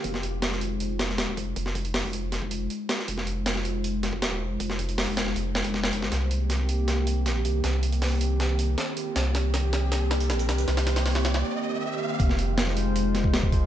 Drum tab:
HH |x-x-x-x-x-x-x-x-|x-xxo-x-x-x-x-x-|x-x-x-x-x-x-x---|x-xxo-x-x--x--x-|
SD |-o--oo----ooo---|-o--o---o-----oo|-o--oo----o-o---|-o--o-oo--o-oo-o|
BD |o------------oo-|o-o--o---o------|o----------o-o--|o-o--o-----o--o-|

HH |x-x-x-x-x-x-x-x-|x-xxo-x-x-x-x-x-|x-x-x-x-x-xxxxxx|xxxxo-x---------|
SD |o---o---o---o---|o---o---o---o---|o-o-o-o-o-o-o-o-|oooooooo--------|
BD |----------------|----------------|----------------|----------------|

HH |x-x-x-x-x-x-x-x-|
SD |-o--oo----o-o---|
BD |o----------o-oo-|